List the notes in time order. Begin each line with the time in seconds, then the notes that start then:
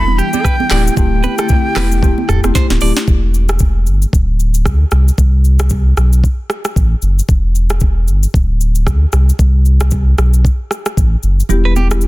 Already playing: E1 E3 G3 B3 D4 E4 B5
0.07 high conga
0.18 G4 G5, shaker
0.33 G3 G4, high conga, shaker
0.45 B4, kick, cross-stick, shaker
0.60 high conga
0.70 D1 D3 A3 C4 E4 G4 D5, cross-stick, clap, open hi-hat, shaker
0.87 shaker
0.96 D1 A3 C4 E4 G4 G5, kick, low conga, shaker
1.24 B4, high conga, shaker
1.38 A3 C4 E4 G4 A4, cross-stick, shaker
1.49 kick, shaker
1.76 E1 A3 C4 E4 G4 B4, cross-stick, clap, open hi-hat, high conga, low conga, shaker
1.91 high conga, shaker
2.02 A3 C4 E4 G4, kick, low conga, shaker
2.18 high conga
2.29 D1 A4, cross-stick, mid tom, shaker
2.44 E1 A3 C4 E4 G4, cross-stick, high conga, shaker
2.55 C5, kick, snare, shaker
2.70 D1, snare, high conga
2.81 D1 A3 C4 E4 G4 D5, open hi-hat, shaker
2.97 snare, shaker
3.08 E1, kick, shaker
3.34 shaker
3.49 cross-stick, shaker
3.59 kick, shaker
3.87 G1, shaker
4.02 shaker
4.13 D1, kick, shaker
4.40 shaker
4.54 shaker
4.66 D2, kick, cross-stick, shaker
4.91 C2, cross-stick, shaker
5.08 shaker
5.18 C2, kick, shaker
5.45 shaker
5.59 cross-stick, shaker
5.70 kick, shaker
5.97 B1, cross-stick, shaker
6.13 shaker
6.24 kick, shaker
6.50 cross-stick, shaker
6.65 cross-stick, shaker
6.76 A1, kick, shaker
7.02 F#1, shaker
7.19 shaker
7.29 E1, kick, shaker
7.55 shaker
7.70 cross-stick, shaker
7.80 kick, shaker
8.08 G1, shaker
8.23 shaker
8.34 D1, kick, shaker
8.61 shaker
8.75 shaker
8.87 D2, kick, cross-stick, shaker
9.12 C2, cross-stick, shaker
9.29 shaker
9.39 C2, kick, shaker
9.66 shaker
9.80 cross-stick, shaker
9.91 kick, shaker
10.18 B1, cross-stick, shaker
10.34 shaker
10.45 kick, shaker
10.71 cross-stick, shaker
10.86 cross-stick, shaker
10.97 A1, kick, shaker
11.23 F#1, shaker
11.40 shaker
11.49 E1 G3 B3 E4 G4, low conga, shaker
11.65 B4
11.76 G4, high conga, shaker
11.91 G3 B3 E4 G4, cross-stick, shaker
12.01 shaker